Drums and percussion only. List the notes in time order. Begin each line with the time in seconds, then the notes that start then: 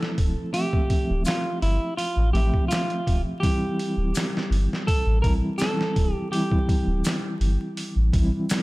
0.03 snare
0.18 kick, open hi-hat
0.54 open hi-hat
0.73 kick
0.90 kick, open hi-hat
1.25 snare, open hi-hat, maracas
1.62 open hi-hat
1.99 open hi-hat
2.35 open hi-hat
2.54 kick
2.71 snare, open hi-hat, maracas
2.90 closed hi-hat
3.07 kick, open hi-hat
3.43 kick, open hi-hat
3.80 open hi-hat
4.15 snare, open hi-hat, maracas
4.37 snare
4.52 open hi-hat
4.73 snare
4.88 kick, open hi-hat
5.24 kick, open hi-hat
5.58 snare, open hi-hat, maracas
5.81 snare
5.96 kick, open hi-hat
6.33 open hi-hat
6.51 kick
6.69 kick, open hi-hat
7.04 snare, open hi-hat, maracas
7.41 open hi-hat
7.77 open hi-hat
8.13 kick, open hi-hat
8.49 snare, open hi-hat, maracas